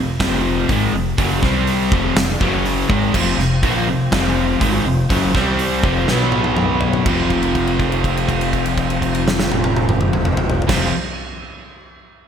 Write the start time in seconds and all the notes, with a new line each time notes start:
Already playing: F1 F2 C3
0.20 F1 F2 C3 F3, kick, snare, open hi-hat
0.69 G#1 G#2 D#3 G#3, kick, open hi-hat
0.93 F1 F2 C3
1.18 F#1 F#2 C#3 F#3, kick, open hi-hat
1.42 C2 C3 G3 C4, kick, snare
1.67 open hi-hat
1.92 F1 F2 C3 F3, kick
2.15 F1 F2 C3, snare, open hi-hat
2.40 F#1 F#2 C#3 F#3, kick
2.65 open hi-hat
2.89 G#1 G#2 D#3 G#3, kick
3.14 F1 F2 C3 F3 F4 C5 G5, kick, crash
3.38 F1 F2 C3, snare
3.63 A#1 A#2 F3 A#3, kick, open hi-hat
3.87 F1 F2 C3
4.11 F1 F2 C3 F3, kick, snare, open hi-hat
4.60 G#1 G#2 D#3 G#3, kick, open hi-hat
4.85 F1 F2 C3
5.10 F#1 F#2 C#3 F#3, kick, open hi-hat
5.34 C2 C3 G3 C4 G4 D5, kick, snare
5.59 open hi-hat
5.83 F1 F2 C3 F3 F4 C5 G5, kick
6.07 B1 B2 F#3 B3 F#4 C#5, snare
6.32 high tom
6.44 high tom
6.56 mid tom
6.81 floor tom
6.93 floor tom
7.05 F1 F2 C3 F4 C5 G5, kick, crash
7.09 F3
7.30 kick, crash
7.43 crash
7.55 kick, crash
7.67 crash
7.79 kick, crash
7.92 crash
8.04 kick, crash
8.17 crash
8.29 kick, crash
8.41 crash
8.53 kick, crash
8.66 crash
8.77 kick, crash
8.90 crash
9.02 kick, crash
9.15 crash
9.28 snare
9.39 snare
9.52 high tom
9.64 high tom
9.76 high tom
9.89 mid tom
10.01 mid tom
10.13 mid tom
10.25 mid tom
10.37 mid tom
10.50 floor tom
10.62 floor tom
10.68 F1 F2 C3 F4 C5 G5, kick, snare, crash
10.73 F3